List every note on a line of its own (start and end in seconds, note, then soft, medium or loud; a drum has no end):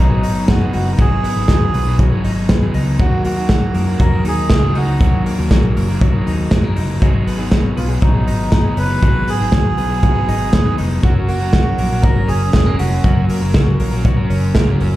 0.00 0.24 A#1 medium
0.00 0.11 F#3 soft
0.00 0.98 F#3 medium
0.00 0.10 B3 soft
0.00 0.48 B3 medium
0.00 0.23 D#4 medium
0.00 0.45 D#4 medium
0.10 0.61 F#3 soft
0.10 0.60 B3 soft
0.10 0.60 D#4 soft
0.10 0.59 G#4 soft
0.23 0.45 G#1 medium
0.23 0.73 D#4 medium
0.23 open hi-hat medium
0.48 0.70 F#1 medium
0.48 1.22 B3 medium
0.48 0.72 F#4 medium
0.48 kick loud
0.48 snare loud
0.48 closed hi-hat medium
0.60 0.99 G#2 medium
0.60 0.99 D#3 medium
0.60 0.96 F#3 medium
0.60 0.97 B3 medium
0.60 0.98 D#4 medium
0.60 0.98 G#4 medium
0.73 0.95 F#1 loud
0.73 2.24 D#4 medium
0.73 0.92 F#4 medium
0.73 open hi-hat medium
0.92 0.99 A#4 medium
0.97 1.20 G#1 medium
0.97 1.36 F#3 medium
0.97 1.48 F#3 medium
0.97 1.36 B3 medium
0.97 1.35 D#4 medium
0.97 1.34 G#4 medium
0.97 1.96 G#4 loud
0.97 kick loud
0.97 closed hi-hat medium
1.23 1.73 B3 medium
1.23 open hi-hat medium
1.35 1.47 G#1 medium
1.35 1.88 F#3 soft
1.35 1.87 B3 soft
1.35 1.86 D#4 soft
1.35 1.85 G#4 medium
1.48 1.70 D#2 medium
1.48 1.99 F#3 medium
1.48 kick loud
1.48 snare medium
1.48 closed hi-hat medium
1.74 2.06 B1 medium
1.74 2.48 B3 medium
1.74 open hi-hat medium
1.86 2.13 F#3 soft
1.86 2.12 B3 medium
1.86 2.11 D#4 medium
1.86 2.11 G#4 soft
1.99 2.99 F#3 medium
1.99 kick loud
1.99 closed hi-hat medium
2.12 2.63 F#3 soft
2.12 2.62 B3 soft
2.12 2.63 D#4 medium
2.12 2.61 G#4 medium
2.24 2.46 G#1 medium
2.24 2.74 D#4 medium
2.24 open hi-hat medium
2.49 2.71 D#2 medium
2.49 3.05 B3 medium
2.49 kick loud
2.49 snare loud
2.49 closed hi-hat medium
2.62 3.01 G#2 medium
2.62 3.01 D#3 medium
2.62 2.98 F#3 medium
2.62 3.00 B3 medium
2.62 2.99 D#4 medium
2.62 3.00 G#4 medium
2.74 2.96 C#2 medium
2.74 4.25 D#4 medium
2.74 open hi-hat medium
2.99 3.71 D#2 medium
2.99 3.37 F#3 medium
2.99 3.50 F#3 medium
2.99 3.37 D#4 medium
2.99 3.23 F#4 medium
2.99 3.36 F#4 medium
2.99 3.35 A#4 medium
2.99 kick loud
2.99 closed hi-hat medium
3.25 3.73 A#3 medium
3.25 4.03 F#4 medium
3.25 open hi-hat medium
3.37 3.89 D#4 soft
3.37 3.88 F#4 soft
3.37 3.86 A#4 medium
3.49 3.99 F#3 medium
3.49 kick loud
3.49 snare loud
3.49 closed hi-hat medium
3.74 3.96 F#2 medium
3.74 4.50 A#3 medium
3.74 open hi-hat medium
3.87 4.12 D#4 soft
3.87 4.11 F#4 soft
3.87 4.11 A#4 soft
4.00 4.21 F2 medium
4.00 5.00 F#3 medium
4.00 4.24 A#4 loud
4.00 kick loud
4.00 closed hi-hat medium
4.12 4.63 D#4 soft
4.12 4.63 F#4 soft
4.12 4.61 A#4 medium
4.25 4.46 D#2 medium
4.25 4.75 D#4 medium
4.25 4.78 G#4 loud
4.25 open hi-hat medium
4.50 4.72 C#2 medium
4.50 5.25 A#3 medium
4.50 kick loud
4.50 snare loud
4.50 closed hi-hat medium
4.63 5.01 D#3 medium
4.63 4.99 F#3 medium
4.63 5.00 D#4 medium
4.63 5.01 F#4 medium
4.63 5.01 A#4 medium
4.75 5.01 C#2 loud
4.75 6.26 D#4 medium
4.75 5.23 F#4 medium
4.75 open hi-hat medium
5.00 5.22 D#2 medium
5.00 5.38 F#3 medium
5.00 5.51 F#3 medium
5.00 5.39 D#4 medium
5.00 5.38 F#4 medium
5.00 5.37 A#4 medium
5.00 kick loud
5.00 closed hi-hat medium
5.26 5.76 A#3 medium
5.26 open hi-hat medium
5.38 5.49 D#2 medium
5.38 5.90 D#4 soft
5.38 5.89 F#4 medium
5.38 5.87 A#4 medium
5.51 5.72 A#1 medium
5.51 6.01 F#3 medium
5.51 kick loud
5.51 snare medium
5.51 closed hi-hat medium
5.76 6.08 F#1 medium
5.76 6.52 A#3 medium
5.76 open hi-hat medium
5.88 6.14 D#4 soft
5.88 6.13 F#4 soft
5.88 6.12 A#4 soft
6.01 7.02 F#3 medium
6.01 kick loud
6.01 closed hi-hat medium
6.13 6.63 D#4 soft
6.13 6.64 F#4 medium
6.13 6.62 A#4 medium
6.26 6.48 D#2 loud
6.26 6.76 D#4 medium
6.26 open hi-hat medium
6.51 6.78 F#2 medium
6.51 6.64 G#3 medium
6.51 kick loud
6.51 snare loud
6.51 closed hi-hat medium
6.63 7.02 D#3 medium
6.63 6.99 F#3 medium
6.63 7.07 A#3 medium
6.63 7.01 D#4 medium
6.63 7.02 F#4 medium
6.63 7.01 A#4 medium
6.76 6.98 F#1 loud
6.76 8.27 D#4 medium
6.76 open hi-hat medium
7.01 7.74 G#1 medium
7.01 7.39 F#3 medium
7.01 7.52 F#3 medium
7.01 7.38 B3 medium
7.01 7.38 D#4 medium
7.01 7.37 G#4 medium
7.01 kick loud
7.01 closed hi-hat medium
7.27 7.75 B3 medium
7.27 open hi-hat medium
7.38 7.90 F#3 soft
7.38 7.89 B3 soft
7.38 7.88 D#4 soft
7.38 7.87 G#4 soft
7.51 8.02 F#3 medium
7.51 kick loud
7.51 snare loud
7.51 closed hi-hat medium
7.77 7.98 B1 medium
7.77 8.51 B3 medium
7.77 7.89 F4 medium
7.77 open hi-hat medium
7.88 8.15 F#3 soft
7.88 8.14 B3 soft
7.88 8.14 D#4 soft
7.88 8.13 G#4 medium
8.02 8.24 A#1 loud
8.02 9.03 F#3 medium
8.02 8.52 D#4 medium
8.02 kick loud
8.02 closed hi-hat medium
8.14 8.65 F#3 soft
8.14 8.64 B3 soft
8.14 8.64 D#4 soft
8.14 8.63 G#4 medium
8.27 8.53 G#1 medium
8.27 8.77 D#4 medium
8.27 open hi-hat medium
8.52 8.74 F#1 medium
8.52 9.27 B3 medium
8.52 8.79 D#4 medium
8.52 kick loud
8.52 snare loud
8.52 closed hi-hat medium
8.65 9.03 G#2 medium
8.65 9.03 D#3 medium
8.65 9.01 F#3 medium
8.65 9.01 B3 medium
8.65 9.02 D#4 medium
8.65 9.02 G#4 medium
8.77 8.98 F#1 medium
8.77 8.90 C#4 medium
8.77 9.30 B4 loud
8.77 open hi-hat medium
8.90 10.27 D#4 medium
9.02 9.24 G#1 loud
9.02 9.40 F#3 medium
9.02 9.53 F#3 medium
9.02 9.40 B3 medium
9.02 9.39 D#4 medium
9.02 9.38 G#4 medium
9.02 kick loud
9.02 closed hi-hat medium
9.28 9.76 B3 medium
9.28 10.75 G#4 loud
9.28 open hi-hat medium
9.39 9.54 G#1 medium
9.39 9.91 F#3 soft
9.39 9.90 B3 soft
9.39 9.89 D#4 medium
9.39 9.89 G#4 medium
9.52 9.78 D#2 medium
9.52 10.03 F#3 medium
9.52 kick loud
9.52 snare loud
9.52 closed hi-hat medium
9.78 10.10 B1 medium
9.78 10.52 B3 medium
9.78 open hi-hat medium
9.90 10.15 F#3 soft
9.90 10.14 B3 soft
9.90 10.13 D#4 medium
9.90 10.13 G#4 medium
10.03 11.03 F#3 medium
10.03 kick loud
10.03 closed hi-hat medium
10.14 10.65 F#3 soft
10.14 10.64 B3 medium
10.14 10.63 D#4 medium
10.14 10.63 G#4 medium
10.28 10.50 G#1 medium
10.28 10.77 D#4 medium
10.28 open hi-hat medium
10.53 10.75 D#2 medium
10.53 11.08 B3 medium
10.53 kick loud
10.53 snare loud
10.53 closed hi-hat medium
10.64 11.04 G#2 medium
10.64 11.04 D#3 medium
10.64 11.01 F#3 medium
10.64 11.03 B3 medium
10.64 11.03 D#4 medium
10.64 11.03 G#4 medium
10.78 11.00 F1 medium
10.78 11.08 D#4 medium
10.78 open hi-hat medium
11.02 11.75 F#1 medium
11.02 11.40 F#3 medium
11.02 11.52 F#3 medium
11.02 11.41 C#4 medium
11.02 11.14 F#4 medium
11.02 11.41 F#4 medium
11.02 11.39 A#4 medium
11.02 kick loud
11.02 closed hi-hat medium
11.27 11.79 A#3 medium
11.27 12.06 F#4 loud
11.27 open hi-hat medium
11.40 11.92 C#4 soft
11.40 11.90 F#4 medium
11.40 11.90 A#4 soft
11.53 12.02 F#3 medium
11.53 kick loud
11.53 snare medium
11.53 closed hi-hat medium
11.78 12.00 A#1 loud
11.78 12.54 A#3 medium
11.78 open hi-hat medium
11.90 12.17 C#4 soft
11.90 12.15 F#4 soft
11.90 12.14 A#4 medium
12.02 12.25 G#1 medium
12.02 13.03 F#3 medium
12.02 12.29 A#4 loud
12.02 kick loud
12.02 closed hi-hat medium
12.16 12.66 C#4 soft
12.16 12.65 F#4 medium
12.16 12.66 A#4 soft
12.28 12.50 F#1 medium
12.28 12.78 C#4 medium
12.28 12.75 G#4 loud
12.28 open hi-hat medium
12.53 12.76 F1 medium
12.53 12.66 G#3 medium
12.53 kick loud
12.53 snare loud
12.53 closed hi-hat medium
12.66 13.03 F#3 medium
12.66 13.29 A#3 medium
12.66 13.03 C#4 medium
12.66 13.04 F#4 medium
12.66 13.04 A#4 medium
12.79 13.01 F1 loud
12.79 14.29 C#4 medium
12.79 13.26 F#4 medium
12.79 open hi-hat medium
13.04 13.26 F#1 loud
13.04 13.42 F#3 medium
13.04 13.54 F#3 medium
13.04 13.42 C#4 medium
13.04 13.41 F#4 medium
13.04 13.40 A#4 medium
13.04 kick loud
13.04 closed hi-hat medium
13.29 13.80 A#3 medium
13.29 open hi-hat medium
13.41 13.53 F#1 medium
13.41 13.92 C#4 soft
13.41 13.91 F#4 medium
13.41 13.91 A#4 medium
13.54 13.76 C#2 medium
13.54 14.04 F#3 medium
13.54 kick loud
13.54 snare medium
13.54 closed hi-hat medium
13.80 14.12 A#1 loud
13.80 14.55 A#3 medium
13.80 open hi-hat medium
13.91 14.18 C#4 soft
13.91 14.17 F#4 soft
13.91 14.16 A#4 medium
14.05 14.96 F#3 medium
14.05 kick loud
14.05 closed hi-hat medium
14.17 14.67 C#4 medium
14.17 14.68 F#4 medium
14.17 14.68 A#4 medium
14.30 14.52 F#1 loud
14.30 14.81 C#4 medium
14.30 open hi-hat medium
14.55 14.77 C#2 medium
14.55 14.96 A#3 medium
14.55 kick loud
14.55 snare loud
14.55 closed hi-hat medium
14.68 14.96 F#3 medium
14.68 14.96 C#4 medium
14.68 14.96 F#4 medium
14.68 14.96 A#4 medium
14.80 14.96 F#1 loud
14.80 14.96 C#4 medium
14.80 open hi-hat medium